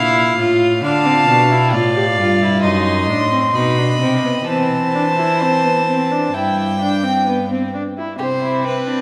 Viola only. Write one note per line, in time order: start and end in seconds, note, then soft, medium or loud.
0.00 0.37 E4 medium
0.38 0.82 F4 medium
0.83 1.07 D4 medium
1.06 1.30 C4 medium
1.29 1.53 D4 medium
1.51 1.75 E4 medium
1.74 1.95 F4 medium
1.96 2.04 G4 medium
2.18 2.44 F4 medium
2.42 2.65 E4 medium
2.64 3.09 D#4 medium
3.09 3.31 D4 medium
3.32 3.54 C4 medium
3.55 3.79 D#4 medium
3.78 4.00 D4 medium
4.01 4.23 C4 medium
4.25 4.33 B3 medium
4.48 4.93 C4 medium
4.95 5.03 D4 medium
5.18 5.43 E4 medium
5.42 5.66 C4 medium
5.65 5.87 B3 medium
5.88 6.13 C4 medium
6.11 6.34 D4 medium
6.35 6.80 E4 medium
6.81 7.05 D4 medium
7.03 7.26 C4 medium
7.27 7.49 B3 medium
7.50 7.73 C4 medium
7.74 7.82 D4 medium
7.97 8.19 E4 medium
8.19 9.01 C4 medium